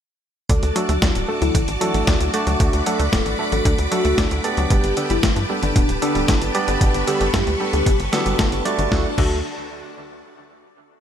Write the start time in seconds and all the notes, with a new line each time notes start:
0.49 D2 D3 F#4 A4 D5 A5 D6, kick, closed hi-hat
0.63 D2, closed hi-hat
0.76 F#3 A3 D4 F#4 A4, closed hi-hat
0.89 D2 A3 F#4, closed hi-hat
1.02 D2 D4, kick, snare, closed hi-hat
1.15 D1, closed hi-hat
1.28 A3 D4 F#4 A4
1.42 D2 F#3 E4, closed hi-hat
1.55 A1 D3, kick, closed hi-hat
1.68 A1, closed hi-hat
1.81 F#3 A3 D4 E4 F#4 A4, closed hi-hat
1.94 A1 A3, closed hi-hat
2.07 D2 D4, kick, snare, closed hi-hat
2.20 D2, closed hi-hat
2.34 A3 D4 F#4 D5, closed hi-hat
2.47 D2 F#3, closed hi-hat
2.60 D2 D3 B5, kick, closed hi-hat
2.73 D2, closed hi-hat
2.86 F#3 A3 D4 F#4 A4, closed hi-hat
2.99 D2 A3, closed hi-hat
3.13 D1 D4 A4, kick, snare, closed hi-hat
3.26 A1, closed hi-hat
3.39 A3 D4 F#4 A4
3.52 A1 F#3 A4, closed hi-hat
3.65 D2 D3, kick, closed hi-hat
3.78 D2, closed hi-hat
3.92 F#3 A3 D4 F#4 A4, closed hi-hat
4.05 D2 A3, closed hi-hat
4.18 D2 D4, kick, snare, closed hi-hat
4.31 D2, closed hi-hat
4.44 A3 B3 D4 G4 D5, closed hi-hat
4.57 D2 F#3, closed hi-hat
4.70 G1 B2 G4 B4 A5, kick, closed hi-hat
4.84 G1, closed hi-hat
4.97 D3 B3 D4 G4 A4, closed hi-hat
5.10 G1 G3 E4, closed hi-hat
5.23 G1 A3, kick, snare, closed hi-hat
5.36 G2, closed hi-hat
5.50 G3 B3 D4 G4 A4
5.63 G1 D3 D4, closed hi-hat
5.76 D1 B2, kick, closed hi-hat
5.89 D1, closed hi-hat
6.02 D3 B3 D4 G4 A4, closed hi-hat
6.15 D1 G3, closed hi-hat
6.28 G1 A3, kick, snare, closed hi-hat
6.41 G1, closed hi-hat
6.55 G3 B3 D4 G4 D5, closed hi-hat
6.68 G1 D3, closed hi-hat
6.81 G1 B2 C#6, kick, closed hi-hat
6.94 G1, closed hi-hat
7.07 D3 B3 D4 G4 A4, closed hi-hat
7.20 G1 G3, closed hi-hat
7.34 G2 A3 G4, kick, snare, closed hi-hat
7.47 D2, closed hi-hat
7.60 G3 B3 D4 G4 A4
7.73 D2 D3 G4, closed hi-hat
7.86 G1 B2, kick, closed hi-hat
7.99 G1, closed hi-hat
8.12 D3 B3 D4 F#4 G4 A4, snare, closed hi-hat
8.26 G1 G3, closed hi-hat
8.39 G1 A3, kick, snare, closed hi-hat
8.52 G1, closed hi-hat
8.65 G3 A3 D4 F#4 D5, closed hi-hat
8.78 G1 D3, closed hi-hat
8.91 D2 D3 A3 D4 F#4 A4 F#5 A5, kick, snare
9.18 D2 D3 A3 D4 F#4 A4, kick, crash